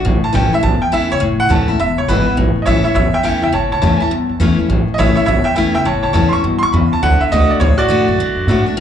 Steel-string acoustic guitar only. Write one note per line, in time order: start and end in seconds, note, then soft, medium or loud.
0.05 0.61 A2 loud
0.33 0.51 E3 medium
0.33 0.52 A3 loud
0.33 0.52 C#4 medium
0.33 0.51 E4 loud
0.53 0.64 C#4 soft
0.53 0.62 E4 medium
0.63 1.19 E2 loud
0.92 1.10 E3 medium
0.92 1.10 A3 loud
0.92 1.10 C#4 loud
0.92 1.08 E4 loud
1.10 1.21 C#4 soft
1.10 1.20 E4 medium
1.20 1.76 A2 loud
1.49 1.67 E3 medium
1.49 1.68 A3 medium
1.49 1.68 C#4 medium
1.49 1.67 E4 medium
1.68 1.79 C#4 medium
1.68 1.78 E4 medium
1.79 2.35 E2 medium
2.08 2.26 E3 medium
2.08 2.26 G#3 medium
2.08 2.26 B3 loud
2.08 2.25 E4 loud
2.26 2.38 B3 soft
2.26 2.36 E4 medium
2.37 2.93 A2 loud
2.66 2.84 E3 medium
2.66 2.84 A3 medium
2.66 2.84 C#4 medium
2.66 2.84 E4 medium
2.85 2.96 C#4 medium
2.85 2.95 E4 medium
2.96 3.51 E2 medium
3.23 3.42 E3 medium
3.23 3.42 A3 medium
3.23 3.42 C#4 loud
3.23 3.41 E4 loud
3.42 3.53 C#4 soft
3.42 3.52 E4 medium
3.52 4.09 A2 loud
3.82 4.00 E3 medium
3.82 4.00 A3 medium
3.82 4.00 C#4 medium
3.82 3.99 E4 medium
4.00 4.11 C#4 medium
4.00 4.11 E4 medium
4.11 4.67 E2 medium
4.40 4.58 E3 loud
4.40 4.58 A3 loud
4.40 4.58 C#4 medium
4.40 4.58 E4 loud
4.59 4.70 C#4 soft
4.59 4.69 E4 medium
4.70 5.26 A2 medium
4.98 5.16 E3 medium
4.98 5.16 A3 medium
4.98 5.17 C#4 loud
4.98 5.16 E4 loud
5.17 5.28 C#4 medium
5.17 5.27 E4 medium
5.28 5.84 E2 medium
5.56 5.74 E3 medium
5.56 5.74 A3 loud
5.56 5.75 C#4 loud
5.56 5.73 E4 loud
5.74 5.86 C#4 soft
5.74 5.85 E4 medium
5.85 6.42 A2 medium
6.13 6.32 E3 medium
6.13 6.32 A3 medium
6.13 6.33 C#4 loud
6.13 6.31 E4 loud
6.33 6.44 C#4 medium
6.33 6.43 E4 medium
6.44 6.72 B2 medium
6.74 7.01 C#3 loud
7.03 7.31 D3 loud
7.32 7.60 D3 medium
7.32 7.60 A3 medium
7.32 7.60 D4 loud
7.32 7.60 F#4 medium
7.61 8.17 A2 loud
7.88 8.07 D3 loud
7.88 8.07 A3 loud
7.88 8.07 D4 loud
7.88 8.07 F#4 loud
8.08 8.18 F#4 medium
8.20 8.47 D3 medium
8.48 8.66 D3 medium
8.48 8.66 A3 medium
8.48 8.66 D4 medium
8.48 8.65 F#4 loud
8.66 8.77 D4 medium
8.66 8.76 F#4 medium
8.77 8.80 A2 loud